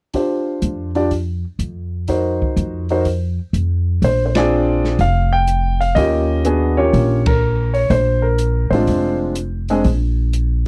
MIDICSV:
0, 0, Header, 1, 4, 480
1, 0, Start_track
1, 0, Tempo, 485437
1, 140, Time_signature, 4, 2, 24, 8
1, 10556, End_track
2, 0, Start_track
2, 0, Title_t, "Grand piano"
2, 0, Program_c, 0, 0
2, 135, Note_on_c, 0, 62, 45
2, 143, Note_on_c, 0, 67, 41
2, 145, Note_on_c, 0, 65, 41
2, 156, Note_on_c, 0, 72, 50
2, 880, Note_off_c, 0, 62, 0
2, 884, Note_off_c, 0, 67, 0
2, 885, Note_off_c, 0, 65, 0
2, 891, Note_off_c, 0, 72, 0
2, 941, Note_on_c, 0, 62, 55
2, 949, Note_on_c, 0, 65, 47
2, 953, Note_on_c, 0, 74, 59
2, 955, Note_on_c, 0, 67, 48
2, 1083, Note_off_c, 0, 62, 0
2, 1087, Note_off_c, 0, 65, 0
2, 1089, Note_off_c, 0, 74, 0
2, 1090, Note_off_c, 0, 67, 0
2, 2060, Note_on_c, 0, 63, 54
2, 2064, Note_on_c, 0, 66, 47
2, 2069, Note_on_c, 0, 70, 47
2, 2073, Note_on_c, 0, 72, 56
2, 2803, Note_off_c, 0, 63, 0
2, 2805, Note_off_c, 0, 66, 0
2, 2808, Note_off_c, 0, 70, 0
2, 2810, Note_off_c, 0, 72, 0
2, 2872, Note_on_c, 0, 63, 58
2, 2873, Note_on_c, 0, 66, 51
2, 2880, Note_on_c, 0, 70, 51
2, 2883, Note_on_c, 0, 72, 66
2, 3009, Note_off_c, 0, 63, 0
2, 3010, Note_off_c, 0, 66, 0
2, 3013, Note_off_c, 0, 70, 0
2, 3015, Note_off_c, 0, 72, 0
2, 3999, Note_on_c, 0, 72, 81
2, 4195, Note_off_c, 0, 72, 0
2, 4209, Note_on_c, 0, 72, 62
2, 4307, Note_off_c, 0, 72, 0
2, 4314, Note_on_c, 0, 74, 82
2, 4318, Note_on_c, 0, 60, 65
2, 4321, Note_on_c, 0, 62, 62
2, 4324, Note_on_c, 0, 65, 59
2, 4331, Note_on_c, 0, 68, 70
2, 4917, Note_off_c, 0, 60, 0
2, 4918, Note_off_c, 0, 62, 0
2, 4920, Note_off_c, 0, 65, 0
2, 4923, Note_off_c, 0, 68, 0
2, 4951, Note_on_c, 0, 77, 88
2, 4965, Note_off_c, 0, 74, 0
2, 5266, Note_on_c, 0, 79, 95
2, 5283, Note_off_c, 0, 77, 0
2, 5714, Note_off_c, 0, 79, 0
2, 5740, Note_on_c, 0, 77, 82
2, 5884, Note_on_c, 0, 75, 93
2, 5898, Note_on_c, 0, 58, 59
2, 5901, Note_on_c, 0, 61, 51
2, 5903, Note_off_c, 0, 77, 0
2, 5910, Note_on_c, 0, 65, 55
2, 5912, Note_on_c, 0, 67, 66
2, 6365, Note_off_c, 0, 58, 0
2, 6366, Note_off_c, 0, 61, 0
2, 6371, Note_off_c, 0, 65, 0
2, 6372, Note_off_c, 0, 67, 0
2, 6379, Note_on_c, 0, 59, 62
2, 6383, Note_on_c, 0, 62, 55
2, 6387, Note_on_c, 0, 68, 70
2, 6389, Note_on_c, 0, 66, 52
2, 6674, Note_off_c, 0, 59, 0
2, 6676, Note_off_c, 0, 62, 0
2, 6678, Note_off_c, 0, 68, 0
2, 6679, Note_off_c, 0, 66, 0
2, 6697, Note_on_c, 0, 58, 60
2, 6697, Note_on_c, 0, 61, 55
2, 6697, Note_on_c, 0, 73, 79
2, 6707, Note_on_c, 0, 67, 66
2, 6708, Note_on_c, 0, 65, 55
2, 6724, Note_off_c, 0, 75, 0
2, 7117, Note_off_c, 0, 58, 0
2, 7117, Note_off_c, 0, 61, 0
2, 7122, Note_off_c, 0, 67, 0
2, 7123, Note_off_c, 0, 65, 0
2, 7187, Note_on_c, 0, 70, 83
2, 7197, Note_off_c, 0, 73, 0
2, 7650, Note_on_c, 0, 73, 74
2, 7682, Note_off_c, 0, 70, 0
2, 7801, Note_off_c, 0, 73, 0
2, 7817, Note_on_c, 0, 72, 84
2, 8131, Note_on_c, 0, 70, 73
2, 8155, Note_off_c, 0, 72, 0
2, 8608, Note_on_c, 0, 72, 71
2, 8629, Note_on_c, 0, 56, 60
2, 8630, Note_on_c, 0, 60, 54
2, 8633, Note_off_c, 0, 70, 0
2, 8635, Note_on_c, 0, 62, 55
2, 8644, Note_on_c, 0, 65, 66
2, 9063, Note_off_c, 0, 72, 0
2, 9230, Note_off_c, 0, 56, 0
2, 9231, Note_off_c, 0, 60, 0
2, 9234, Note_off_c, 0, 62, 0
2, 9238, Note_off_c, 0, 65, 0
2, 9591, Note_on_c, 0, 56, 65
2, 9595, Note_on_c, 0, 60, 60
2, 9598, Note_on_c, 0, 62, 57
2, 9603, Note_on_c, 0, 68, 69
2, 9727, Note_off_c, 0, 56, 0
2, 9729, Note_off_c, 0, 60, 0
2, 9730, Note_off_c, 0, 62, 0
2, 9733, Note_off_c, 0, 68, 0
2, 10556, End_track
3, 0, Start_track
3, 0, Title_t, "Upright bass"
3, 0, Program_c, 1, 32
3, 613, Note_on_c, 1, 41, 68
3, 1416, Note_off_c, 1, 41, 0
3, 1571, Note_on_c, 1, 41, 65
3, 2375, Note_off_c, 1, 41, 0
3, 2536, Note_on_c, 1, 41, 75
3, 3338, Note_off_c, 1, 41, 0
3, 3493, Note_on_c, 1, 41, 66
3, 3944, Note_off_c, 1, 41, 0
3, 3975, Note_on_c, 1, 34, 75
3, 4899, Note_off_c, 1, 34, 0
3, 4934, Note_on_c, 1, 29, 73
3, 5858, Note_off_c, 1, 29, 0
3, 5894, Note_on_c, 1, 39, 80
3, 6818, Note_off_c, 1, 39, 0
3, 6856, Note_on_c, 1, 34, 83
3, 7779, Note_off_c, 1, 34, 0
3, 7812, Note_on_c, 1, 34, 86
3, 8583, Note_off_c, 1, 34, 0
3, 8609, Note_on_c, 1, 33, 70
3, 8760, Note_off_c, 1, 33, 0
3, 8777, Note_on_c, 1, 29, 77
3, 9698, Note_off_c, 1, 29, 0
3, 9735, Note_on_c, 1, 34, 80
3, 10556, Note_off_c, 1, 34, 0
3, 10556, End_track
4, 0, Start_track
4, 0, Title_t, "Drums"
4, 134, Note_on_c, 9, 46, 34
4, 141, Note_on_c, 9, 36, 27
4, 233, Note_off_c, 9, 46, 0
4, 239, Note_off_c, 9, 36, 0
4, 612, Note_on_c, 9, 42, 40
4, 711, Note_off_c, 9, 42, 0
4, 940, Note_on_c, 9, 46, 28
4, 1038, Note_off_c, 9, 46, 0
4, 1096, Note_on_c, 9, 46, 33
4, 1102, Note_on_c, 9, 36, 28
4, 1195, Note_off_c, 9, 46, 0
4, 1201, Note_off_c, 9, 36, 0
4, 1574, Note_on_c, 9, 42, 41
4, 1673, Note_off_c, 9, 42, 0
4, 2052, Note_on_c, 9, 46, 36
4, 2064, Note_on_c, 9, 36, 28
4, 2151, Note_off_c, 9, 46, 0
4, 2163, Note_off_c, 9, 36, 0
4, 2392, Note_on_c, 9, 36, 39
4, 2491, Note_off_c, 9, 36, 0
4, 2540, Note_on_c, 9, 42, 41
4, 2639, Note_off_c, 9, 42, 0
4, 2859, Note_on_c, 9, 46, 31
4, 2958, Note_off_c, 9, 46, 0
4, 3016, Note_on_c, 9, 46, 36
4, 3023, Note_on_c, 9, 36, 28
4, 3115, Note_off_c, 9, 46, 0
4, 3122, Note_off_c, 9, 36, 0
4, 3500, Note_on_c, 9, 42, 44
4, 3599, Note_off_c, 9, 42, 0
4, 3977, Note_on_c, 9, 46, 42
4, 3983, Note_on_c, 9, 36, 30
4, 4076, Note_off_c, 9, 46, 0
4, 4082, Note_off_c, 9, 36, 0
4, 4300, Note_on_c, 9, 51, 58
4, 4305, Note_on_c, 9, 38, 70
4, 4399, Note_off_c, 9, 51, 0
4, 4404, Note_off_c, 9, 38, 0
4, 4789, Note_on_c, 9, 38, 36
4, 4888, Note_off_c, 9, 38, 0
4, 4932, Note_on_c, 9, 46, 40
4, 4939, Note_on_c, 9, 36, 29
4, 5031, Note_off_c, 9, 46, 0
4, 5038, Note_off_c, 9, 36, 0
4, 5413, Note_on_c, 9, 42, 50
4, 5511, Note_off_c, 9, 42, 0
4, 5747, Note_on_c, 9, 46, 35
4, 5846, Note_off_c, 9, 46, 0
4, 5897, Note_on_c, 9, 46, 41
4, 5898, Note_on_c, 9, 36, 31
4, 5996, Note_off_c, 9, 46, 0
4, 5997, Note_off_c, 9, 36, 0
4, 6374, Note_on_c, 9, 42, 50
4, 6473, Note_off_c, 9, 42, 0
4, 6859, Note_on_c, 9, 36, 31
4, 6861, Note_on_c, 9, 46, 39
4, 6958, Note_off_c, 9, 36, 0
4, 6960, Note_off_c, 9, 46, 0
4, 7178, Note_on_c, 9, 51, 70
4, 7184, Note_on_c, 9, 36, 77
4, 7277, Note_off_c, 9, 51, 0
4, 7283, Note_off_c, 9, 36, 0
4, 7657, Note_on_c, 9, 46, 36
4, 7756, Note_off_c, 9, 46, 0
4, 7813, Note_on_c, 9, 46, 41
4, 7817, Note_on_c, 9, 36, 31
4, 7912, Note_off_c, 9, 46, 0
4, 7916, Note_off_c, 9, 36, 0
4, 8290, Note_on_c, 9, 42, 50
4, 8388, Note_off_c, 9, 42, 0
4, 8628, Note_on_c, 9, 46, 36
4, 8727, Note_off_c, 9, 46, 0
4, 8773, Note_on_c, 9, 46, 41
4, 8777, Note_on_c, 9, 36, 30
4, 8872, Note_off_c, 9, 46, 0
4, 8876, Note_off_c, 9, 36, 0
4, 9249, Note_on_c, 9, 42, 49
4, 9348, Note_off_c, 9, 42, 0
4, 9576, Note_on_c, 9, 46, 36
4, 9675, Note_off_c, 9, 46, 0
4, 9732, Note_on_c, 9, 46, 40
4, 9739, Note_on_c, 9, 36, 31
4, 9831, Note_off_c, 9, 46, 0
4, 9838, Note_off_c, 9, 36, 0
4, 10216, Note_on_c, 9, 42, 50
4, 10315, Note_off_c, 9, 42, 0
4, 10556, End_track
0, 0, End_of_file